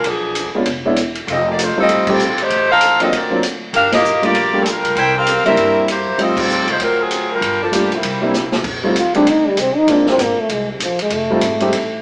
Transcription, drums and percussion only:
0.04 kick soft
0.04 ride medium
0.35 hi-hat pedal medium
0.35 ride medium
0.66 kick soft
0.66 ride medium
0.96 hi-hat pedal medium
0.96 ride medium
1.15 ride soft
1.27 kick soft
1.27 ride medium
1.59 hi-hat pedal medium
1.59 ride medium
1.89 kick soft
1.89 ride medium
2.07 kick medium
2.07 crash medium
2.19 hi-hat pedal medium
2.38 ride soft
2.50 kick soft
2.50 ride medium
2.81 hi-hat pedal medium
2.81 ride medium
3.00 ride soft
3.12 kick soft
3.12 ride medium
3.43 hi-hat pedal medium
3.43 ride medium
3.73 kick soft
3.73 ride medium
3.92 snare medium
3.92 ride medium
4.04 hi-hat pedal medium
4.23 ride soft
4.34 kick soft
4.34 ride medium
4.66 hi-hat pedal medium
4.66 ride medium
4.85 ride soft
4.96 kick soft
4.96 ride medium
5.27 hi-hat pedal medium
5.27 ride medium
5.46 ride soft
5.57 kick soft
5.57 ride medium
5.88 hi-hat pedal medium
5.88 ride medium
6.18 kick soft
6.18 ride medium
6.37 kick medium
6.37 crash medium
6.49 hi-hat pedal medium
6.68 ride soft
6.79 kick soft
6.79 ride medium
7.11 hi-hat pedal medium
7.11 ride medium
7.41 kick soft
7.41 ride medium
7.73 hi-hat pedal medium
7.73 ride medium
7.92 ride soft
8.03 kick soft
8.03 ride medium
8.34 snare soft
8.34 hi-hat pedal medium
8.52 snare medium
8.64 kick medium
8.64 crash medium
8.95 kick soft
8.95 hi-hat pedal medium
8.95 ride medium
9.14 ride soft
9.26 kick soft
9.26 ride medium
9.57 kick soft
9.57 hi-hat pedal medium
9.57 ride medium
9.87 kick soft
9.87 ride medium
10.06 snare medium
10.18 kick soft
10.18 hi-hat pedal medium
10.18 ride medium
10.49 kick soft
10.49 ride medium
10.80 kick soft
10.80 hi-hat pedal medium
10.80 ride medium
10.99 ride medium
11.10 kick soft
11.10 ride medium
11.41 kick soft
11.41 hi-hat pedal medium
11.41 ride medium
11.60 ride soft
11.72 kick soft
11.72 ride medium

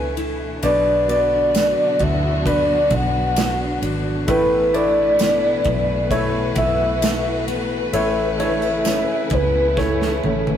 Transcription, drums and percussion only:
0.17 ride medium
0.63 ride medium
1.09 ride medium
1.55 snare loud
1.55 ride medium
1.55 tambourine medium
1.99 kick medium
1.99 ride soft
2.46 kick medium
2.46 ride medium
2.90 kick medium
2.90 ride medium
3.36 snare loud
3.36 ride medium
3.36 tambourine medium
3.83 ride medium
4.28 kick loud
4.28 ride medium
4.74 ride medium
5.19 snare medium
5.19 ride medium
5.19 tambourine medium
5.64 kick medium
5.64 ride soft
6.11 kick medium
6.11 ride medium
6.56 kick medium
6.56 ride medium
7.02 snare loud
7.02 ride medium
7.02 tambourine medium
7.48 ride medium
7.93 ride medium
8.40 ride medium
8.85 snare medium
8.85 ride medium
8.85 tambourine medium
9.30 kick medium
9.30 ride soft
9.77 kick medium
9.77 snare soft
10.02 snare medium
10.24 high tom medium
10.47 high tom medium

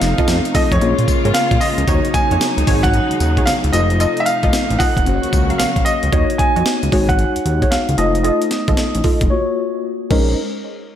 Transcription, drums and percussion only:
0.01 snare medium
0.01 closed hi-hat medium
0.01 tambourine medium
0.18 kick medium
0.18 closed hi-hat soft
0.28 snare loud
0.28 closed hi-hat medium
0.28 tambourine medium
0.45 closed hi-hat medium
0.55 kick loud
0.55 open hi-hat medium
0.55 tambourine medium
0.72 kick loud
0.72 closed hi-hat medium
0.81 closed hi-hat medium
0.99 closed hi-hat medium
1.08 kick medium
1.08 closed hi-hat medium
1.08 tambourine medium
1.25 closed hi-hat soft
1.34 snare loud
1.34 closed hi-hat medium
1.34 tambourine loud
1.51 kick medium
1.51 closed hi-hat medium
1.61 open hi-hat medium
1.61 tambourine medium
1.78 closed hi-hat medium
1.88 kick loud
1.88 closed hi-hat medium
1.88 tambourine medium
2.05 closed hi-hat medium
2.14 kick loud
2.14 closed hi-hat medium
2.14 tambourine medium
2.31 closed hi-hat soft
2.41 snare loud
2.41 closed hi-hat medium
2.41 tambourine medium
2.58 closed hi-hat medium
2.67 kick loud
2.67 open hi-hat medium
2.67 tambourine medium
2.84 kick loud
2.84 closed hi-hat medium
2.94 closed hi-hat medium
3.11 closed hi-hat medium
3.20 closed hi-hat medium
3.20 tambourine medium
3.37 kick medium
3.37 closed hi-hat soft
3.47 snare loud
3.47 closed hi-hat medium
3.47 tambourine loud
3.64 closed hi-hat medium
3.73 closed hi-hat medium
3.73 tambourine medium
3.90 closed hi-hat soft
4.00 closed hi-hat medium
4.00 tambourine medium
4.17 closed hi-hat medium
4.26 closed hi-hat medium
4.26 tambourine medium
4.43 kick medium
4.43 closed hi-hat soft
4.53 snare loud
4.53 closed hi-hat medium
4.53 tambourine medium
4.70 closed hi-hat medium
4.80 kick loud
4.80 open hi-hat medium
4.80 tambourine medium
4.97 kick loud
4.97 closed hi-hat medium
5.06 closed hi-hat medium
5.23 closed hi-hat medium
5.33 kick loud
5.33 closed hi-hat medium
5.33 tambourine medium
5.50 closed hi-hat soft
5.59 snare loud
5.59 closed hi-hat medium
5.59 tambourine loud
5.76 kick medium
5.76 closed hi-hat medium
5.86 closed hi-hat medium
5.86 tambourine medium
6.03 closed hi-hat medium
6.13 kick loud
6.13 closed hi-hat medium
6.30 closed hi-hat medium
6.39 kick medium
6.39 closed hi-hat medium
6.56 closed hi-hat soft
6.66 snare loud
6.66 closed hi-hat medium
6.83 closed hi-hat medium
6.92 kick medium
6.92 open hi-hat medium
7.09 kick loud
7.09 closed hi-hat medium
7.19 closed hi-hat medium
7.36 closed hi-hat medium
7.46 closed hi-hat medium
7.62 kick medium
7.62 closed hi-hat soft
7.72 snare loud
7.72 closed hi-hat medium
7.89 closed hi-hat medium
7.98 closed hi-hat medium
8.15 closed hi-hat soft
8.24 closed hi-hat medium
8.42 closed hi-hat medium
8.51 snare medium
8.51 closed hi-hat medium
8.68 kick medium
8.68 closed hi-hat soft
8.77 snare loud
8.77 closed hi-hat medium
8.95 closed hi-hat medium
9.04 kick loud
9.04 open hi-hat medium
9.21 kick loud
9.21 closed hi-hat medium
10.11 kick loud
10.11 crash medium

